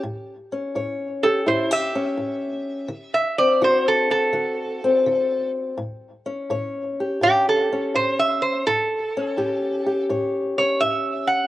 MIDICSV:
0, 0, Header, 1, 3, 480
1, 0, Start_track
1, 0, Tempo, 717703
1, 26, Time_signature, 4, 2, 24, 8
1, 7671, End_track
2, 0, Start_track
2, 0, Title_t, "Resonator guitar played with a steel bar"
2, 0, Program_c, 0, 25
2, 824, Note_on_c, 0, 69, 77
2, 978, Note_off_c, 0, 69, 0
2, 988, Note_on_c, 0, 72, 68
2, 1140, Note_off_c, 0, 72, 0
2, 1154, Note_on_c, 0, 76, 73
2, 2079, Note_off_c, 0, 76, 0
2, 2101, Note_on_c, 0, 76, 77
2, 2255, Note_off_c, 0, 76, 0
2, 2263, Note_on_c, 0, 74, 74
2, 2416, Note_off_c, 0, 74, 0
2, 2436, Note_on_c, 0, 72, 75
2, 2582, Note_off_c, 0, 72, 0
2, 2595, Note_on_c, 0, 69, 80
2, 2742, Note_off_c, 0, 69, 0
2, 2750, Note_on_c, 0, 69, 75
2, 3677, Note_off_c, 0, 69, 0
2, 4837, Note_on_c, 0, 67, 92
2, 4984, Note_off_c, 0, 67, 0
2, 5008, Note_on_c, 0, 69, 70
2, 5305, Note_off_c, 0, 69, 0
2, 5320, Note_on_c, 0, 72, 86
2, 5466, Note_off_c, 0, 72, 0
2, 5480, Note_on_c, 0, 76, 82
2, 5626, Note_off_c, 0, 76, 0
2, 5631, Note_on_c, 0, 72, 70
2, 5781, Note_off_c, 0, 72, 0
2, 5797, Note_on_c, 0, 69, 90
2, 6724, Note_off_c, 0, 69, 0
2, 7076, Note_on_c, 0, 73, 79
2, 7223, Note_off_c, 0, 73, 0
2, 7226, Note_on_c, 0, 76, 90
2, 7540, Note_on_c, 0, 78, 78
2, 7542, Note_off_c, 0, 76, 0
2, 7671, Note_off_c, 0, 78, 0
2, 7671, End_track
3, 0, Start_track
3, 0, Title_t, "Steel-string acoustic guitar"
3, 0, Program_c, 1, 25
3, 23, Note_on_c, 1, 45, 76
3, 349, Note_on_c, 1, 61, 58
3, 471, Note_off_c, 1, 45, 0
3, 503, Note_on_c, 1, 45, 74
3, 507, Note_on_c, 1, 73, 64
3, 830, Note_on_c, 1, 67, 60
3, 951, Note_off_c, 1, 45, 0
3, 976, Note_off_c, 1, 67, 0
3, 979, Note_on_c, 1, 64, 55
3, 981, Note_on_c, 1, 45, 78
3, 1143, Note_off_c, 1, 64, 0
3, 1143, Note_on_c, 1, 67, 53
3, 1298, Note_off_c, 1, 61, 0
3, 1306, Note_on_c, 1, 61, 55
3, 1429, Note_off_c, 1, 45, 0
3, 1455, Note_on_c, 1, 45, 68
3, 1906, Note_off_c, 1, 45, 0
3, 1921, Note_off_c, 1, 61, 0
3, 1922, Note_off_c, 1, 73, 0
3, 1928, Note_on_c, 1, 50, 82
3, 1938, Note_off_c, 1, 67, 0
3, 2262, Note_on_c, 1, 60, 57
3, 2382, Note_off_c, 1, 50, 0
3, 2418, Note_on_c, 1, 50, 72
3, 2420, Note_on_c, 1, 66, 65
3, 2738, Note_off_c, 1, 66, 0
3, 2746, Note_on_c, 1, 66, 60
3, 2867, Note_off_c, 1, 50, 0
3, 2889, Note_off_c, 1, 66, 0
3, 2894, Note_on_c, 1, 50, 67
3, 2897, Note_on_c, 1, 66, 58
3, 3223, Note_off_c, 1, 60, 0
3, 3237, Note_on_c, 1, 60, 58
3, 3345, Note_off_c, 1, 50, 0
3, 3386, Note_on_c, 1, 50, 75
3, 3831, Note_off_c, 1, 50, 0
3, 3839, Note_off_c, 1, 66, 0
3, 3863, Note_on_c, 1, 45, 77
3, 3865, Note_off_c, 1, 60, 0
3, 4186, Note_on_c, 1, 61, 63
3, 4310, Note_off_c, 1, 45, 0
3, 4347, Note_on_c, 1, 45, 79
3, 4352, Note_on_c, 1, 73, 65
3, 4683, Note_on_c, 1, 67, 55
3, 4793, Note_off_c, 1, 45, 0
3, 4823, Note_on_c, 1, 45, 77
3, 4829, Note_off_c, 1, 61, 0
3, 4832, Note_on_c, 1, 61, 57
3, 5152, Note_off_c, 1, 61, 0
3, 5167, Note_on_c, 1, 61, 59
3, 5271, Note_off_c, 1, 45, 0
3, 5313, Note_on_c, 1, 45, 74
3, 5757, Note_off_c, 1, 45, 0
3, 5769, Note_off_c, 1, 73, 0
3, 5771, Note_off_c, 1, 67, 0
3, 5773, Note_off_c, 1, 61, 0
3, 5798, Note_on_c, 1, 45, 86
3, 6132, Note_on_c, 1, 61, 61
3, 6240, Note_off_c, 1, 45, 0
3, 6268, Note_on_c, 1, 45, 75
3, 6272, Note_on_c, 1, 67, 60
3, 6589, Note_off_c, 1, 67, 0
3, 6597, Note_on_c, 1, 67, 57
3, 6716, Note_off_c, 1, 45, 0
3, 6751, Note_on_c, 1, 45, 72
3, 6755, Note_on_c, 1, 73, 61
3, 7076, Note_off_c, 1, 61, 0
3, 7084, Note_on_c, 1, 61, 53
3, 7197, Note_off_c, 1, 45, 0
3, 7235, Note_on_c, 1, 45, 70
3, 7671, Note_off_c, 1, 45, 0
3, 7671, Note_off_c, 1, 61, 0
3, 7671, Note_off_c, 1, 67, 0
3, 7671, Note_off_c, 1, 73, 0
3, 7671, End_track
0, 0, End_of_file